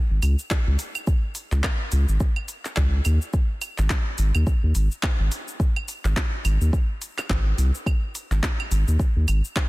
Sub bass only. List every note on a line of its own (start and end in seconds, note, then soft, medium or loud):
0.11 0.20 G#1 medium
0.22 0.36 C#2 loud
0.67 0.77 C#2 loud
1.52 1.61 C#2 loud
1.92 2.06 C#2 loud
2.08 2.18 G#1 medium
2.77 3.01 C#2 medium
3.06 3.19 D#2 medium
3.79 3.88 G#1 loud
4.19 4.32 G#1 medium
4.35 4.45 D#2 medium
4.63 4.73 D#2 medium
4.75 4.88 G#1 medium
5.20 5.29 G#1 medium
6.05 6.14 G#1 loud
6.45 6.58 G#1 loud
6.61 6.71 D#2 medium
7.30 7.54 G#1 medium
7.58 7.71 C2 loud
8.31 8.41 G#1 medium
8.71 8.85 G#1 loud
8.88 8.97 D#2 medium
9.16 9.26 D#2 medium
9.28 9.41 G#1 medium